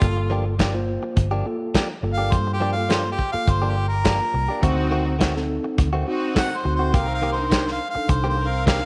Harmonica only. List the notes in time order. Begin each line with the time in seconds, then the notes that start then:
Already playing: F4
2.13 F5
2.33 C5
2.53 G4
2.72 F5
2.93 C5
3.11 G4
3.32 F5
3.50 C5
3.70 G4
3.88 A#4
6.37 F#5
6.57 C5
6.76 C5
6.95 F5
7.14 F5
7.33 C5
7.53 C5
7.72 F5
7.90 F5
8.10 C5
8.29 C5
8.47 F5
8.67 F5